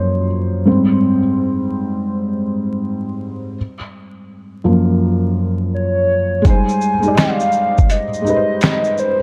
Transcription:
0.00 0.69 F#2 medium
0.00 0.69 F3 soft
0.00 0.69 A#3 medium
0.00 0.26 C5 medium
0.00 0.69 C#5 medium
0.66 1.18 G#2 medium
0.66 1.19 G3 soft
0.66 1.19 C4 medium
4.64 6.41 F#2 soft
4.64 6.41 F3 soft
4.64 6.42 A#3 medium
5.74 6.48 C#5 loud
6.42 6.89 G#3 medium
6.42 6.91 D#4 medium
6.42 kick loud
6.42 closed hi-hat medium
6.42 shaker medium
6.46 6.92 G3 medium
6.46 6.93 C5 medium
6.46 7.21 G#5 loud
6.69 shaker medium
6.81 shaker soft
7.00 8.02 G#3 medium
7.00 8.04 D#4 medium
7.00 shaker soft
7.06 8.05 G4 medium
7.06 7.11 D5 medium
7.15 8.10 D#5 medium
7.15 finger snap medium
7.15 snare loud
7.15 closed hi-hat medium
7.15 shaker medium
7.19 7.92 F5 loud
7.40 shaker soft
7.52 shaker soft
7.78 kick medium
7.78 shaker soft
7.90 9.01 D#5 loud
7.90 closed hi-hat medium
7.90 shaker medium
8.13 shaker soft
8.22 9.15 G#3 medium
8.22 9.17 D#4 medium
8.26 9.18 G4 medium
8.26 8.36 B4 medium
8.26 shaker soft
8.36 9.22 C5 medium
8.61 finger snap medium
8.61 snare loud
8.61 closed hi-hat medium
8.61 shaker medium
8.84 shaker soft
8.98 9.22 C5 loud
8.98 shaker medium

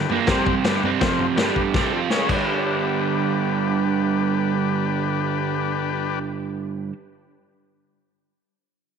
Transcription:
0.00 0.19 D4 medium
0.00 0.19 G4 medium
0.00 0.20 B4 medium
0.09 0.28 A#2 medium
0.09 0.28 F3 loud
0.09 0.28 A#3 loud
0.09 floor tom medium
0.27 0.64 C3 loud
0.27 0.64 G3 medium
0.27 0.65 C4 loud
0.27 0.55 C4 medium
0.27 0.55 G4 medium
0.27 kick loud
0.27 snare loud
0.27 floor tom medium
0.31 0.55 C5 medium
0.46 kick medium
0.46 floor tom medium
0.64 0.82 G2 medium
0.64 0.82 D3 loud
0.64 0.83 G3 loud
0.64 0.90 D4 medium
0.64 0.91 G4 medium
0.64 0.91 B4 loud
0.64 snare loud
0.64 floor tom medium
0.83 1.01 C3 loud
0.83 1.01 G3 loud
0.83 1.02 C4 loud
0.83 floor tom medium
1.00 1.38 F2 loud
1.00 1.38 C3 medium
1.00 1.26 C4 medium
1.00 1.27 F4 medium
1.00 1.27 C5 medium
1.00 kick loud
1.00 snare loud
1.00 floor tom medium
1.04 1.38 F3 loud
1.19 floor tom medium
1.35 1.63 D4 medium
1.35 1.62 G4 medium
1.35 1.63 B4 medium
1.35 snare loud
1.35 floor tom medium
1.39 1.75 G2 medium
1.39 1.75 D3 medium
1.39 1.75 G3 medium
1.56 kick medium
1.56 floor tom medium
1.74 1.92 C3 medium
1.74 1.92 G3 medium
1.74 1.92 C4 medium
1.74 2.01 D4 medium
1.74 2.01 G4 medium
1.74 2.01 A4 medium
1.74 kick loud
1.74 snare medium
1.93 2.09 F3 medium
1.93 2.10 C4 loud
1.93 2.10 F4 loud
2.09 2.28 C#3 medium
2.09 2.29 G#3 medium
2.09 2.29 C#4 medium
2.09 2.29 C#4 loud
2.09 2.30 G#4 medium
2.09 2.30 C#5 medium
2.09 snare medium
2.26 6.91 G2 loud
2.26 6.92 D3 loud
2.26 6.93 G3 loud
2.26 kick medium
2.26 crash medium
2.31 6.19 D4 medium
2.31 6.19 G4 medium
2.31 6.19 B4 medium

